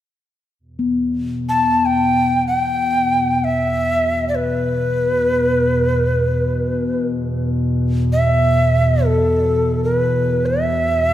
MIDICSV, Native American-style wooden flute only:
0, 0, Header, 1, 2, 480
1, 0, Start_track
1, 0, Key_signature, 1, "minor"
1, 0, Tempo, 500000
1, 10690, End_track
2, 0, Start_track
2, 0, Title_t, "Native American-style wooden flute"
2, 0, Program_c, 0, 77
2, 1428, Note_on_c, 0, 81, 64
2, 1780, Note_on_c, 0, 79, 65
2, 1794, Note_off_c, 0, 81, 0
2, 2338, Note_off_c, 0, 79, 0
2, 2374, Note_on_c, 0, 79, 70
2, 3303, Note_on_c, 0, 76, 69
2, 3318, Note_off_c, 0, 79, 0
2, 4103, Note_off_c, 0, 76, 0
2, 4113, Note_on_c, 0, 74, 39
2, 4175, Note_on_c, 0, 71, 63
2, 4190, Note_off_c, 0, 74, 0
2, 6784, Note_off_c, 0, 71, 0
2, 7801, Note_on_c, 0, 76, 68
2, 8689, Note_on_c, 0, 69, 61
2, 8703, Note_off_c, 0, 76, 0
2, 9428, Note_off_c, 0, 69, 0
2, 9447, Note_on_c, 0, 71, 63
2, 10039, Note_on_c, 0, 76, 77
2, 10054, Note_off_c, 0, 71, 0
2, 10690, Note_off_c, 0, 76, 0
2, 10690, End_track
0, 0, End_of_file